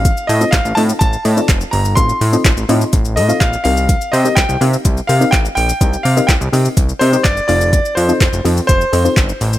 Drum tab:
HH |x-o-x-o-x-o-x-o-|x-o-x-o-x-o-x-o-|x-o-x-o-x-o-x-o-|x-o-x-o-x-o-x-o-|
SH |xxxxxxxxxxxxxxxx|xxxxxxxxxxxxxxxx|xxxxxxxxxxxxxxxx|xxxxxxxxxxxxxxxx|
CP |----x-------x---|----x-------x---|----x-------x---|----x-------x---|
SD |----o-------o---|----o-------o---|----o-------o---|----o-------o---|
BD |o---o---o---o---|o---o---o---o---|o---o---o---o---|o---o---o---o---|

HH |x-o-x-o-x-o-x-o-|
SH |xxxxxxxxxxxxxxxx|
CP |----x-------x---|
SD |----o-------o---|
BD |o---o---o---o---|